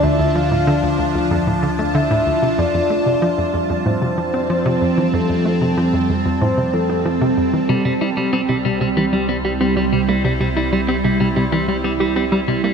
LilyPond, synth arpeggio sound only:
\new Staff \with { instrumentName = "Synth arpeggio sound" } { \clef bass \time 4/4 \key f \major \tempo 4 = 94 d,16 d,16 f16 a,16 d16 d,16 d,16 d,16 f,16 a,16 d16 a16 d16 a,16 d,16 c16 | f,16 f,16 a16 c16 f16 f,16 f,16 f,16 a,16 c16 f16 c'16 f16 c16 f,16 e16 | f,16 f,16 a16 c16 f16 f,16 f,16 f,16 a,16 c16 f16 c'16 f16 c16 f,16 e16 | c16 c16 e'16 g16 c'16 c16 c16 c16 e16 g16 c'16 g'16 c'16 g16 c16 bes16 |
c16 c16 e'16 g16 c'16 c16 c16 c16 e16 g16 c'16 g'16 c'16 g16 c16 bes16 | }